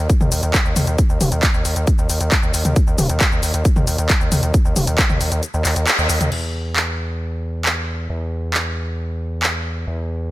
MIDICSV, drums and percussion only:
0, 0, Header, 1, 2, 480
1, 0, Start_track
1, 0, Tempo, 444444
1, 1063, Time_signature, 4, 2, 24, 8
1, 11136, End_track
2, 0, Start_track
2, 0, Title_t, "Drums"
2, 103, Note_on_c, 9, 36, 119
2, 103, Note_on_c, 9, 42, 62
2, 103, Note_on_c, 9, 82, 43
2, 211, Note_off_c, 9, 36, 0
2, 211, Note_off_c, 9, 42, 0
2, 211, Note_off_c, 9, 82, 0
2, 223, Note_on_c, 9, 47, 81
2, 223, Note_on_c, 9, 82, 21
2, 331, Note_off_c, 9, 47, 0
2, 331, Note_off_c, 9, 82, 0
2, 343, Note_on_c, 9, 46, 104
2, 343, Note_on_c, 9, 82, 74
2, 451, Note_off_c, 9, 46, 0
2, 451, Note_off_c, 9, 82, 0
2, 463, Note_on_c, 9, 42, 58
2, 463, Note_on_c, 9, 82, 30
2, 571, Note_off_c, 9, 42, 0
2, 571, Note_off_c, 9, 82, 0
2, 583, Note_on_c, 9, 36, 105
2, 583, Note_on_c, 9, 39, 110
2, 583, Note_on_c, 9, 42, 60
2, 583, Note_on_c, 9, 82, 42
2, 691, Note_off_c, 9, 36, 0
2, 691, Note_off_c, 9, 39, 0
2, 691, Note_off_c, 9, 42, 0
2, 691, Note_off_c, 9, 82, 0
2, 704, Note_on_c, 9, 82, 22
2, 812, Note_off_c, 9, 82, 0
2, 823, Note_on_c, 9, 46, 102
2, 823, Note_on_c, 9, 47, 84
2, 823, Note_on_c, 9, 82, 80
2, 931, Note_off_c, 9, 46, 0
2, 931, Note_off_c, 9, 47, 0
2, 931, Note_off_c, 9, 82, 0
2, 943, Note_on_c, 9, 42, 61
2, 943, Note_on_c, 9, 82, 30
2, 1051, Note_off_c, 9, 42, 0
2, 1051, Note_off_c, 9, 82, 0
2, 1063, Note_on_c, 9, 36, 116
2, 1063, Note_on_c, 9, 42, 63
2, 1063, Note_on_c, 9, 82, 41
2, 1171, Note_off_c, 9, 36, 0
2, 1171, Note_off_c, 9, 42, 0
2, 1171, Note_off_c, 9, 82, 0
2, 1183, Note_on_c, 9, 82, 22
2, 1291, Note_off_c, 9, 82, 0
2, 1303, Note_on_c, 9, 46, 99
2, 1303, Note_on_c, 9, 47, 79
2, 1303, Note_on_c, 9, 82, 72
2, 1411, Note_off_c, 9, 46, 0
2, 1411, Note_off_c, 9, 47, 0
2, 1411, Note_off_c, 9, 82, 0
2, 1424, Note_on_c, 9, 42, 65
2, 1424, Note_on_c, 9, 82, 33
2, 1532, Note_off_c, 9, 42, 0
2, 1532, Note_off_c, 9, 82, 0
2, 1543, Note_on_c, 9, 36, 117
2, 1543, Note_on_c, 9, 39, 111
2, 1543, Note_on_c, 9, 42, 67
2, 1543, Note_on_c, 9, 82, 42
2, 1651, Note_off_c, 9, 36, 0
2, 1651, Note_off_c, 9, 39, 0
2, 1651, Note_off_c, 9, 42, 0
2, 1651, Note_off_c, 9, 82, 0
2, 1663, Note_on_c, 9, 82, 21
2, 1771, Note_off_c, 9, 82, 0
2, 1783, Note_on_c, 9, 46, 89
2, 1783, Note_on_c, 9, 82, 72
2, 1891, Note_off_c, 9, 46, 0
2, 1891, Note_off_c, 9, 82, 0
2, 1903, Note_on_c, 9, 42, 63
2, 1903, Note_on_c, 9, 82, 33
2, 2011, Note_off_c, 9, 42, 0
2, 2011, Note_off_c, 9, 82, 0
2, 2023, Note_on_c, 9, 36, 115
2, 2023, Note_on_c, 9, 42, 59
2, 2023, Note_on_c, 9, 82, 42
2, 2131, Note_off_c, 9, 36, 0
2, 2131, Note_off_c, 9, 42, 0
2, 2131, Note_off_c, 9, 82, 0
2, 2142, Note_on_c, 9, 82, 22
2, 2250, Note_off_c, 9, 82, 0
2, 2262, Note_on_c, 9, 46, 99
2, 2262, Note_on_c, 9, 82, 78
2, 2370, Note_off_c, 9, 46, 0
2, 2370, Note_off_c, 9, 82, 0
2, 2382, Note_on_c, 9, 42, 61
2, 2382, Note_on_c, 9, 82, 31
2, 2490, Note_off_c, 9, 42, 0
2, 2490, Note_off_c, 9, 82, 0
2, 2502, Note_on_c, 9, 39, 110
2, 2502, Note_on_c, 9, 42, 62
2, 2502, Note_on_c, 9, 82, 41
2, 2503, Note_on_c, 9, 36, 103
2, 2610, Note_off_c, 9, 39, 0
2, 2610, Note_off_c, 9, 42, 0
2, 2610, Note_off_c, 9, 82, 0
2, 2611, Note_off_c, 9, 36, 0
2, 2622, Note_on_c, 9, 82, 20
2, 2730, Note_off_c, 9, 82, 0
2, 2742, Note_on_c, 9, 46, 104
2, 2742, Note_on_c, 9, 82, 78
2, 2850, Note_off_c, 9, 46, 0
2, 2850, Note_off_c, 9, 82, 0
2, 2863, Note_on_c, 9, 42, 61
2, 2863, Note_on_c, 9, 47, 61
2, 2863, Note_on_c, 9, 82, 31
2, 2971, Note_off_c, 9, 42, 0
2, 2971, Note_off_c, 9, 47, 0
2, 2971, Note_off_c, 9, 82, 0
2, 2983, Note_on_c, 9, 36, 113
2, 2983, Note_on_c, 9, 42, 63
2, 2983, Note_on_c, 9, 82, 43
2, 3091, Note_off_c, 9, 36, 0
2, 3091, Note_off_c, 9, 42, 0
2, 3091, Note_off_c, 9, 82, 0
2, 3103, Note_on_c, 9, 82, 22
2, 3211, Note_off_c, 9, 82, 0
2, 3222, Note_on_c, 9, 46, 91
2, 3222, Note_on_c, 9, 47, 78
2, 3222, Note_on_c, 9, 82, 73
2, 3330, Note_off_c, 9, 46, 0
2, 3330, Note_off_c, 9, 47, 0
2, 3330, Note_off_c, 9, 82, 0
2, 3342, Note_on_c, 9, 42, 70
2, 3342, Note_on_c, 9, 82, 33
2, 3450, Note_off_c, 9, 42, 0
2, 3450, Note_off_c, 9, 82, 0
2, 3462, Note_on_c, 9, 39, 117
2, 3462, Note_on_c, 9, 42, 66
2, 3462, Note_on_c, 9, 82, 45
2, 3463, Note_on_c, 9, 36, 109
2, 3570, Note_off_c, 9, 39, 0
2, 3570, Note_off_c, 9, 42, 0
2, 3570, Note_off_c, 9, 82, 0
2, 3571, Note_off_c, 9, 36, 0
2, 3582, Note_on_c, 9, 82, 20
2, 3690, Note_off_c, 9, 82, 0
2, 3703, Note_on_c, 9, 46, 92
2, 3703, Note_on_c, 9, 82, 74
2, 3811, Note_off_c, 9, 46, 0
2, 3811, Note_off_c, 9, 82, 0
2, 3823, Note_on_c, 9, 42, 66
2, 3823, Note_on_c, 9, 82, 30
2, 3931, Note_off_c, 9, 42, 0
2, 3931, Note_off_c, 9, 82, 0
2, 3943, Note_on_c, 9, 36, 118
2, 3943, Note_on_c, 9, 42, 64
2, 3943, Note_on_c, 9, 82, 42
2, 4051, Note_off_c, 9, 36, 0
2, 4051, Note_off_c, 9, 42, 0
2, 4051, Note_off_c, 9, 82, 0
2, 4063, Note_on_c, 9, 47, 78
2, 4063, Note_on_c, 9, 82, 22
2, 4171, Note_off_c, 9, 47, 0
2, 4171, Note_off_c, 9, 82, 0
2, 4183, Note_on_c, 9, 46, 99
2, 4183, Note_on_c, 9, 82, 74
2, 4291, Note_off_c, 9, 46, 0
2, 4291, Note_off_c, 9, 82, 0
2, 4303, Note_on_c, 9, 42, 63
2, 4303, Note_on_c, 9, 82, 31
2, 4411, Note_off_c, 9, 42, 0
2, 4411, Note_off_c, 9, 82, 0
2, 4423, Note_on_c, 9, 36, 104
2, 4423, Note_on_c, 9, 39, 109
2, 4423, Note_on_c, 9, 42, 66
2, 4423, Note_on_c, 9, 82, 42
2, 4531, Note_off_c, 9, 36, 0
2, 4531, Note_off_c, 9, 39, 0
2, 4531, Note_off_c, 9, 42, 0
2, 4531, Note_off_c, 9, 82, 0
2, 4544, Note_on_c, 9, 82, 21
2, 4652, Note_off_c, 9, 82, 0
2, 4663, Note_on_c, 9, 46, 99
2, 4663, Note_on_c, 9, 47, 78
2, 4663, Note_on_c, 9, 82, 78
2, 4771, Note_off_c, 9, 46, 0
2, 4771, Note_off_c, 9, 47, 0
2, 4771, Note_off_c, 9, 82, 0
2, 4783, Note_on_c, 9, 42, 65
2, 4783, Note_on_c, 9, 82, 31
2, 4891, Note_off_c, 9, 42, 0
2, 4891, Note_off_c, 9, 82, 0
2, 4903, Note_on_c, 9, 36, 116
2, 4903, Note_on_c, 9, 42, 67
2, 4903, Note_on_c, 9, 82, 41
2, 5011, Note_off_c, 9, 36, 0
2, 5011, Note_off_c, 9, 42, 0
2, 5011, Note_off_c, 9, 82, 0
2, 5024, Note_on_c, 9, 82, 21
2, 5132, Note_off_c, 9, 82, 0
2, 5143, Note_on_c, 9, 46, 101
2, 5143, Note_on_c, 9, 47, 77
2, 5143, Note_on_c, 9, 82, 69
2, 5251, Note_off_c, 9, 46, 0
2, 5251, Note_off_c, 9, 47, 0
2, 5251, Note_off_c, 9, 82, 0
2, 5263, Note_on_c, 9, 42, 72
2, 5263, Note_on_c, 9, 82, 31
2, 5371, Note_off_c, 9, 42, 0
2, 5371, Note_off_c, 9, 82, 0
2, 5383, Note_on_c, 9, 36, 109
2, 5383, Note_on_c, 9, 39, 122
2, 5383, Note_on_c, 9, 42, 67
2, 5383, Note_on_c, 9, 82, 42
2, 5491, Note_off_c, 9, 36, 0
2, 5491, Note_off_c, 9, 39, 0
2, 5491, Note_off_c, 9, 42, 0
2, 5491, Note_off_c, 9, 82, 0
2, 5503, Note_on_c, 9, 47, 57
2, 5503, Note_on_c, 9, 82, 19
2, 5611, Note_off_c, 9, 47, 0
2, 5611, Note_off_c, 9, 82, 0
2, 5623, Note_on_c, 9, 46, 94
2, 5623, Note_on_c, 9, 82, 65
2, 5731, Note_off_c, 9, 46, 0
2, 5731, Note_off_c, 9, 82, 0
2, 5743, Note_on_c, 9, 42, 65
2, 5743, Note_on_c, 9, 82, 30
2, 5851, Note_off_c, 9, 42, 0
2, 5851, Note_off_c, 9, 82, 0
2, 5862, Note_on_c, 9, 42, 67
2, 5862, Note_on_c, 9, 82, 42
2, 5970, Note_off_c, 9, 42, 0
2, 5970, Note_off_c, 9, 82, 0
2, 5983, Note_on_c, 9, 82, 21
2, 6091, Note_off_c, 9, 82, 0
2, 6103, Note_on_c, 9, 39, 63
2, 6103, Note_on_c, 9, 46, 95
2, 6103, Note_on_c, 9, 82, 74
2, 6211, Note_off_c, 9, 39, 0
2, 6211, Note_off_c, 9, 46, 0
2, 6211, Note_off_c, 9, 82, 0
2, 6223, Note_on_c, 9, 42, 67
2, 6223, Note_on_c, 9, 82, 31
2, 6331, Note_off_c, 9, 42, 0
2, 6331, Note_off_c, 9, 82, 0
2, 6343, Note_on_c, 9, 39, 119
2, 6343, Note_on_c, 9, 46, 56
2, 6343, Note_on_c, 9, 82, 41
2, 6451, Note_off_c, 9, 39, 0
2, 6451, Note_off_c, 9, 46, 0
2, 6451, Note_off_c, 9, 82, 0
2, 6463, Note_on_c, 9, 82, 21
2, 6571, Note_off_c, 9, 82, 0
2, 6583, Note_on_c, 9, 46, 107
2, 6583, Note_on_c, 9, 82, 77
2, 6691, Note_off_c, 9, 46, 0
2, 6691, Note_off_c, 9, 82, 0
2, 6704, Note_on_c, 9, 42, 68
2, 6704, Note_on_c, 9, 47, 58
2, 6704, Note_on_c, 9, 82, 31
2, 6812, Note_off_c, 9, 42, 0
2, 6812, Note_off_c, 9, 47, 0
2, 6812, Note_off_c, 9, 82, 0
2, 6824, Note_on_c, 9, 49, 81
2, 6932, Note_off_c, 9, 49, 0
2, 7304, Note_on_c, 9, 39, 120
2, 7412, Note_off_c, 9, 39, 0
2, 8264, Note_on_c, 9, 39, 113
2, 8372, Note_off_c, 9, 39, 0
2, 9223, Note_on_c, 9, 39, 113
2, 9331, Note_off_c, 9, 39, 0
2, 10182, Note_on_c, 9, 39, 114
2, 10290, Note_off_c, 9, 39, 0
2, 11136, End_track
0, 0, End_of_file